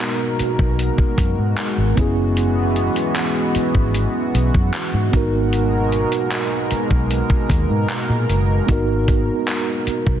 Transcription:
Already playing: B2 G#3 B3 D#4 F#4 A#4
0.00 clap, closed hi-hat
0.39 muted fingered electric bass stroke, closed hi-hat
0.59 B1, kick
0.79 closed hi-hat
0.98 kick
1.18 F#2, kick, closed hi-hat
1.38 G#2
1.57 clap, closed hi-hat
1.78 G#1
1.96 E3 B3 C#4 E4, kick, closed hi-hat
2.01 G#4
2.37 closed hi-hat
2.76 closed hi-hat
2.96 closed hi-hat
3.15 clap, closed hi-hat
3.55 muted fingered electric bass stroke, closed hi-hat
3.75 G#1, kick
3.94 closed hi-hat
4.34 B1, closed hi-hat
4.54 F#2, kick
4.73 clap, closed hi-hat
4.94 G#2
5.11 G#1 B2 G#3 B3 D#4 F#4 A#4, kick, closed hi-hat
5.17 A#4
5.53 closed hi-hat
5.92 closed hi-hat
6.12 closed hi-hat
6.31 clap, closed hi-hat
6.71 muted fingered electric bass stroke, closed hi-hat
6.91 B1, kick
7.11 closed hi-hat
7.30 kick
7.49 D#2, kick, closed hi-hat
7.70 G#2
7.89 clap, closed hi-hat
8.09 A#2
8.29 F#1, closed hi-hat
8.67 G#1 B3 D#4 F#4, kick, closed hi-hat
8.72 A#4
9.08 kick, closed hi-hat
9.48 clap, closed hi-hat
9.87 muted fingered electric bass stroke, closed hi-hat
10.07 B1, kick

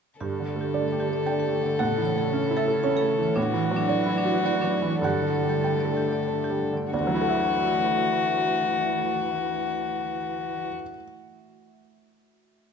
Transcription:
0.19 G2 D3 A3 D4 G4 A4 D5
0.40 D3
0.47 D5
0.56 A3
0.61 G4
0.74 D4 D5
0.88 D5
0.92 G4
1.00 G4
1.09 A4 D5
1.26 D4 G5 A5
1.40 G4
1.45 A3
1.63 D3 D5
1.79 A2 C#3 E4 A4 C#5 F#5
1.98 E3
2.05 C#5
2.16 A3 A4
2.33 C#4
2.44 C#5
2.51 E4
2.57 A4 E5
2.68 A4 C#5
2.83 C#4 C#5 A5
2.97 A4
3.02 A3
3.19 E3
3.23 C#5
3.36 A2 E3 F#3 D4 F#4 D5
3.54 E3
3.63 F#4
3.71 F#3
3.76 D4
3.88 D4 D5
4.04 E4 F#4
4.18 D4
4.25 F#4
4.31 F#4
4.44 D4 D5 F#5
4.61 F#3 D4
4.82 E3
4.90 F#4
5.02 G2 D3 A3 D4 G4 A4 F#5
5.22 D3
5.35 D5
5.43 G3
5.49 G4
5.64 D4 G5
5.80 D5
5.85 A4
5.97 G4
6.07 G4
6.13 D5
6.28 D4 A5
6.44 G4
6.50 G3
6.73 D3
6.77 D5
6.92 D2 E3 A3 F#4 D5 E5
7.00 D3
7.07 F#3
7.15 E4
7.21 A4
7.29 E5

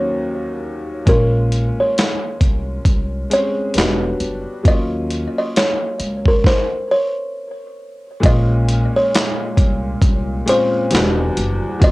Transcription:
Already playing: D#2 F#3 A#3 C#4 F#4 C#5
1.05 A#1 G#3 A#3 C#4 A#4, kick, closed hi-hat
1.10 F4
1.52 closed hi-hat
1.80 C#5
1.98 snare, clap, closed hi-hat
2.41 C2, kick, closed hi-hat
2.85 C2, kick, closed hi-hat
3.30 G#3 C4 C#4 C#5, closed hi-hat
3.34 G#4
3.74 E1 G3 B3 D4, closed hi-hat
3.78 F#4, snare, clap
4.20 F#1, closed hi-hat
4.63 D#2 F#3 A#3 C#4, kick, closed hi-hat
4.67 F4 D#5
5.10 closed hi-hat
5.38 D#5
5.56 C#5, snare, clap, closed hi-hat
6.00 C#2, closed hi-hat
6.25 A#4, kick
6.44 C5, kick, snare
6.91 C#5
8.20 A#1 A#2 G#3 A#3 C#4, kick, closed hi-hat
8.25 F4 D#5
8.69 closed hi-hat
8.96 C#5
9.15 snare, clap, closed hi-hat
9.57 C2, kick, closed hi-hat
10.02 C2, kick, closed hi-hat
10.46 A#2 G#3 C4 C#4 C5, closed hi-hat
10.51 F4
10.90 E1 E2 F#3 B3 D4, closed hi-hat
10.95 G3 F#4, snare, clap
11.37 F#1, closed hi-hat
11.80 D#2 F#3 A#3 C#4, kick, closed hi-hat
11.84 F4 D#5

